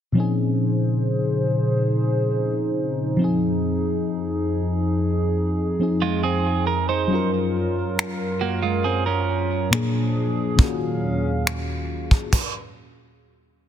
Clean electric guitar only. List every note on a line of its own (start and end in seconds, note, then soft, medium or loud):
6.02 6.23 G#3 medium
6.02 6.23 F4 medium
6.23 6.65 C4 medium
6.23 6.65 G#4 medium
6.67 6.88 A#4 medium
6.89 7.31 D#4 medium
6.89 7.30 C5 medium
8.41 8.62 A#3 medium
8.41 8.62 F#4 medium
8.62 8.84 G#3 medium
8.62 8.83 F4 medium
8.84 9.06 C4 medium
8.84 9.05 G#4 medium
9.06 9.69 C#4 medium
9.06 9.68 A#4 medium